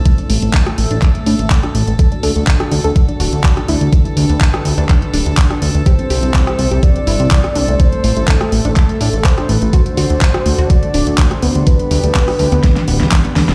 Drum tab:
HH |xxoxxxoxxxoxxxox|xxoxxxoxxxoxxxox|xxoxxxoxxxoxxxox|xxoxxxoxxxoxxxox|
CP |----x---x---x---|----x-------x---|----x---x---x---|----x-------x---|
SD |-----r-------r--|-----r-------r--|-----r-------r--|-----r-------r--|
BD |o---o---o---o---|o---o---o---o---|o---o---o---o---|o---o---o---o---|

HH |xxoxxxoxxxoxxxox|xxoxxxoxxxoxxxox|xxoxxooxxxoxxxox|
CP |----x---x---x---|----x-------x---|----x-------x---|
SD |-----r-------r--|-----r-------r--|-----r--oo-oo-oo|
BD |o---o---o---o---|o---o---o---o---|o---o---o---o---|